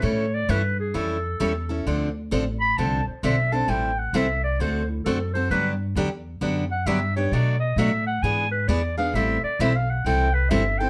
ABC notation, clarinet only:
X:1
M:4/4
L:1/8
Q:"Swing" 1/4=132
K:Am
V:1 name="Clarinet"
^c d B ^G A4 | z3 b a c e a | g ^f e d c E A c | B z4 ^f e ^c |
d ^d e ^f ^g B =d =f | e d (3e f ^f g B e g |]